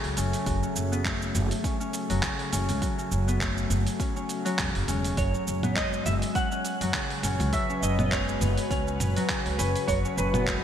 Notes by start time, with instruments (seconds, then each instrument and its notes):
Already playing: harp C#3 A3 B3 C#4, synth drone F#3 C#4 G#4 A4 E5
0.04 upright bass C#2, open hi-hat
0.17 upright bass F#1, harp C#4, open hi-hat, shaker
0.33 open hi-hat, shaker
0.46 upright bass F#1, harp F#3, kick, open hi-hat, shaker
0.63 harp C#4, shaker
0.76 upright bass F#1, shaker
0.92 harp B3, shaker
1.05 harp A3, kick, clap, shaker
1.22 shaker
1.35 upright bass F#1, open hi-hat, shaker
1.51 open hi-hat, shaker
1.64 harp C#4, kick, open hi-hat, shaker
1.80 harp C#4, shaker
1.93 open hi-hat, shaker
2.10 upright bass F#1, harp F#3, open hi-hat, shaker
2.23 harp C#3, kick, clap, open hi-hat, shaker
2.39 open hi-hat
2.52 upright bass F#1, harp C#4, open hi-hat, shaker
2.69 upright bass C#2, open hi-hat, shaker
2.82 harp F#3, kick, open hi-hat, shaker
2.98 harp C#4, shaker
3.11 upright bass F#1, shaker
3.28 harp B3, shaker
3.41 harp A3, kick, clap, shaker
3.58 shaker
3.70 upright bass F#1, open hi-hat, shaker
3.87 open hi-hat, shaker
4.00 harp C#4, kick, open hi-hat, shaker
4.16 harp C#4, shaker
4.29 open hi-hat, shaker
4.45 harp F#3, open hi-hat, shaker
4.58 upright bass E1, harp C#3, kick, clap, open hi-hat, shaker
4.75 upright bass F#1, open hi-hat
4.88 upright bass E1, harp C#4, open hi-hat, shaker
5.04 open hi-hat, shaker
5.17 upright bass F#1, harp F#3, electric slide guitar C#5, kick, open hi-hat, shaker
5.34 harp C#4, shaker
5.47 upright bass F#1, shaker
5.63 harp B3, synth drone F#4 C#5, mid tom, shaker
5.76 harp G#3, electric slide guitar D#5, kick, clap, shaker
5.93 shaker
6.04 upright bass F#1, synth drone B4 F#5, electric slide guitar E5, open hi-hat, shaker
6.22 open hi-hat, shaker
6.35 harp C#4, electric slide guitar F#5, kick, open hi-hat, shaker
6.52 harp C#4, shaker
6.65 open hi-hat, shaker
6.81 upright bass F#1, harp F#3, open hi-hat, shaker
6.94 harp C#3, kick, clap, open hi-hat, shaker
7.10 open hi-hat
7.23 upright bass F#1, harp C#4, mid tom, open hi-hat, shaker
7.40 upright bass C#2, open hi-hat, shaker
7.53 harp F#3, electric slide guitar E5, kick, open hi-hat, shaker
7.69 harp C#4, shaker
7.82 upright bass F#1, electric slide guitar D#5, shaker
7.99 harp B3, mid tom, shaker
8.06 electric slide guitar D#5
8.12 harp G#3, electric slide guitar C#5, kick, clap, shaker
8.29 shaker
8.41 upright bass F#1, open hi-hat, shaker
8.57 open hi-hat, shaker
8.71 upright bass C#2, harp C#4, electric slide guitar C#5, kick, open hi-hat, shaker
8.87 harp C#4, shaker
9.00 upright bass F#1, mid tom, open hi-hat, shaker
9.17 harp F#3, open hi-hat, shaker
9.29 harp C#3, kick, clap, open hi-hat, shaker
9.45 upright bass C#2, open hi-hat
9.59 upright bass F#1, harp C#4, electric slide guitar B4, open hi-hat, shaker
9.76 open hi-hat, shaker
9.88 upright bass F#1, harp F#3, electric slide guitar C#5, kick, open hi-hat, shaker
10.05 harp C#4, shaker
10.17 upright bass F#1, electric slide guitar B4, shaker
10.34 harp B3, mid tom, shaker
10.47 harp G#3, kick, clap, shaker